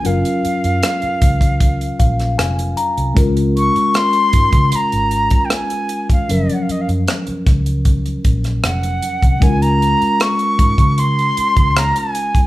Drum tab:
HH |xxxxxxxxxxxxxxxx|xxxxxxxxxxxxxxxx|xxxxxxxxxxxxxxxx|xxxxxxxxxxxxxxxx|
SD |----r------rr---|----r-------r---|----r-r----rr---|----r-------r---|
BD |------ooo-o-----|o-----oo---o---o|------o-o-o----o|o-----oo---o---o|